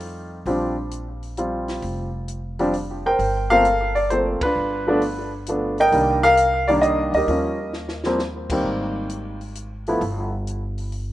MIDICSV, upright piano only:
0, 0, Header, 1, 2, 480
1, 0, Start_track
1, 0, Key_signature, -2, "major"
1, 0, Tempo, 454890
1, 483, Time_signature, 3, 2, 24, 8
1, 3369, Key_signature, -2, "minor"
1, 11742, End_track
2, 0, Start_track
2, 0, Title_t, "Upright piano"
2, 0, Program_c, 0, 0
2, 0, Note_on_c, 0, 55, 54
2, 0, Note_on_c, 0, 57, 52
2, 0, Note_on_c, 0, 60, 56
2, 0, Note_on_c, 0, 63, 64
2, 0, Note_on_c, 0, 65, 91
2, 294, Note_off_c, 0, 65, 0
2, 393, Note_off_c, 0, 55, 0
2, 395, Note_off_c, 0, 57, 0
2, 396, Note_off_c, 0, 60, 0
2, 398, Note_off_c, 0, 63, 0
2, 491, Note_on_c, 0, 53, 62
2, 494, Note_on_c, 0, 55, 48
2, 496, Note_on_c, 0, 60, 52
2, 504, Note_on_c, 0, 62, 60
2, 780, Note_off_c, 0, 53, 0
2, 782, Note_off_c, 0, 55, 0
2, 783, Note_off_c, 0, 60, 0
2, 787, Note_off_c, 0, 62, 0
2, 1452, Note_on_c, 0, 53, 44
2, 1456, Note_on_c, 0, 55, 46
2, 1460, Note_on_c, 0, 60, 46
2, 1467, Note_on_c, 0, 65, 46
2, 2191, Note_off_c, 0, 53, 0
2, 2193, Note_off_c, 0, 55, 0
2, 2194, Note_off_c, 0, 60, 0
2, 2198, Note_off_c, 0, 65, 0
2, 2735, Note_on_c, 0, 55, 58
2, 2736, Note_on_c, 0, 53, 68
2, 2742, Note_on_c, 0, 60, 53
2, 2747, Note_on_c, 0, 62, 69
2, 2874, Note_off_c, 0, 53, 0
2, 2874, Note_off_c, 0, 55, 0
2, 2877, Note_off_c, 0, 60, 0
2, 2880, Note_off_c, 0, 62, 0
2, 3230, Note_on_c, 0, 70, 65
2, 3230, Note_on_c, 0, 72, 65
2, 3234, Note_on_c, 0, 79, 90
2, 3687, Note_off_c, 0, 70, 0
2, 3696, Note_on_c, 0, 77, 108
2, 3699, Note_on_c, 0, 53, 58
2, 3701, Note_on_c, 0, 69, 67
2, 3703, Note_on_c, 0, 57, 55
2, 3703, Note_on_c, 0, 70, 69
2, 3708, Note_on_c, 0, 58, 56
2, 3715, Note_on_c, 0, 60, 68
2, 3719, Note_off_c, 0, 79, 0
2, 3816, Note_off_c, 0, 72, 0
2, 3836, Note_off_c, 0, 53, 0
2, 3839, Note_off_c, 0, 57, 0
2, 3841, Note_off_c, 0, 58, 0
2, 3844, Note_off_c, 0, 60, 0
2, 4169, Note_on_c, 0, 74, 75
2, 4190, Note_off_c, 0, 77, 0
2, 4291, Note_off_c, 0, 69, 0
2, 4292, Note_off_c, 0, 70, 0
2, 4329, Note_on_c, 0, 72, 83
2, 4332, Note_off_c, 0, 74, 0
2, 4338, Note_on_c, 0, 53, 50
2, 4341, Note_on_c, 0, 57, 46
2, 4351, Note_on_c, 0, 58, 40
2, 4357, Note_on_c, 0, 60, 52
2, 4403, Note_off_c, 0, 72, 0
2, 4627, Note_off_c, 0, 53, 0
2, 4628, Note_off_c, 0, 57, 0
2, 4633, Note_off_c, 0, 58, 0
2, 4636, Note_off_c, 0, 60, 0
2, 4671, Note_on_c, 0, 71, 81
2, 4685, Note_on_c, 0, 62, 55
2, 4692, Note_on_c, 0, 65, 50
2, 5137, Note_on_c, 0, 53, 62
2, 5140, Note_off_c, 0, 62, 0
2, 5148, Note_on_c, 0, 57, 68
2, 5153, Note_on_c, 0, 59, 63
2, 5156, Note_on_c, 0, 62, 81
2, 5276, Note_off_c, 0, 53, 0
2, 5281, Note_off_c, 0, 57, 0
2, 5284, Note_off_c, 0, 59, 0
2, 5285, Note_off_c, 0, 62, 0
2, 5581, Note_off_c, 0, 71, 0
2, 5591, Note_off_c, 0, 65, 0
2, 5783, Note_on_c, 0, 53, 44
2, 5793, Note_on_c, 0, 57, 45
2, 5797, Note_on_c, 0, 59, 48
2, 5800, Note_on_c, 0, 62, 52
2, 6069, Note_off_c, 0, 53, 0
2, 6074, Note_off_c, 0, 57, 0
2, 6076, Note_off_c, 0, 59, 0
2, 6078, Note_off_c, 0, 62, 0
2, 6120, Note_on_c, 0, 70, 67
2, 6121, Note_on_c, 0, 75, 69
2, 6127, Note_on_c, 0, 79, 107
2, 6250, Note_on_c, 0, 51, 53
2, 6252, Note_on_c, 0, 55, 54
2, 6255, Note_on_c, 0, 58, 50
2, 6263, Note_on_c, 0, 62, 60
2, 6542, Note_off_c, 0, 51, 0
2, 6543, Note_off_c, 0, 55, 0
2, 6545, Note_off_c, 0, 58, 0
2, 6548, Note_off_c, 0, 62, 0
2, 6570, Note_off_c, 0, 70, 0
2, 6578, Note_on_c, 0, 77, 113
2, 6586, Note_on_c, 0, 70, 74
2, 6605, Note_off_c, 0, 79, 0
2, 6700, Note_off_c, 0, 75, 0
2, 7044, Note_on_c, 0, 74, 86
2, 7055, Note_on_c, 0, 51, 63
2, 7060, Note_on_c, 0, 55, 56
2, 7066, Note_on_c, 0, 58, 56
2, 7070, Note_off_c, 0, 77, 0
2, 7073, Note_on_c, 0, 62, 76
2, 7097, Note_off_c, 0, 74, 0
2, 7172, Note_off_c, 0, 70, 0
2, 7191, Note_on_c, 0, 75, 86
2, 7501, Note_off_c, 0, 75, 0
2, 7539, Note_on_c, 0, 75, 83
2, 7556, Note_on_c, 0, 70, 51
2, 7560, Note_on_c, 0, 67, 53
2, 7658, Note_off_c, 0, 51, 0
2, 7660, Note_off_c, 0, 55, 0
2, 7663, Note_off_c, 0, 58, 0
2, 7667, Note_off_c, 0, 62, 0
2, 7683, Note_on_c, 0, 53, 50
2, 7686, Note_on_c, 0, 55, 40
2, 7696, Note_on_c, 0, 58, 44
2, 7698, Note_on_c, 0, 61, 56
2, 7978, Note_off_c, 0, 53, 0
2, 7979, Note_off_c, 0, 55, 0
2, 7984, Note_off_c, 0, 58, 0
2, 7986, Note_off_c, 0, 61, 0
2, 8129, Note_off_c, 0, 75, 0
2, 8137, Note_off_c, 0, 70, 0
2, 8139, Note_off_c, 0, 67, 0
2, 8498, Note_on_c, 0, 53, 65
2, 8498, Note_on_c, 0, 55, 50
2, 8508, Note_on_c, 0, 58, 58
2, 8509, Note_on_c, 0, 60, 70
2, 8634, Note_off_c, 0, 53, 0
2, 8635, Note_off_c, 0, 55, 0
2, 8640, Note_off_c, 0, 58, 0
2, 8640, Note_off_c, 0, 60, 0
2, 8982, Note_on_c, 0, 51, 59
2, 8989, Note_on_c, 0, 55, 55
2, 8992, Note_on_c, 0, 58, 49
2, 8998, Note_on_c, 0, 60, 64
2, 9580, Note_off_c, 0, 51, 0
2, 9583, Note_off_c, 0, 55, 0
2, 9585, Note_off_c, 0, 58, 0
2, 9587, Note_off_c, 0, 60, 0
2, 10422, Note_on_c, 0, 53, 59
2, 10426, Note_on_c, 0, 57, 52
2, 10433, Note_on_c, 0, 59, 52
2, 10435, Note_on_c, 0, 64, 58
2, 10555, Note_off_c, 0, 53, 0
2, 10556, Note_off_c, 0, 57, 0
2, 10560, Note_off_c, 0, 59, 0
2, 10561, Note_off_c, 0, 64, 0
2, 11742, End_track
0, 0, End_of_file